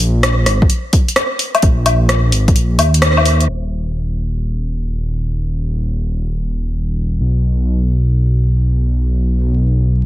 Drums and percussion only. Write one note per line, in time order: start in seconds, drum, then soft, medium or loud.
0.00 open hi-hat medium
0.23 cross-stick loud
0.23 closed hi-hat medium
0.46 cross-stick medium
0.46 open hi-hat medium
0.62 kick loud
0.70 closed hi-hat medium
0.93 kick loud
0.93 open hi-hat medium
1.08 closed hi-hat soft
1.16 cross-stick loud
1.16 closed hi-hat medium
1.39 open hi-hat medium
1.55 closed hi-hat soft
1.55 low woodblock medium
1.62 kick loud
1.62 closed hi-hat medium
1.86 open hi-hat medium
1.86 low woodblock medium
2.09 cross-stick medium
2.09 closed hi-hat medium
2.32 open hi-hat medium
2.48 kick loud
2.48 closed hi-hat soft
2.56 closed hi-hat medium
2.79 open hi-hat medium
2.79 low woodblock medium
2.94 closed hi-hat medium
3.02 cross-stick loud
3.02 closed hi-hat medium
3.17 low woodblock medium
3.26 open hi-hat medium
3.41 closed hi-hat soft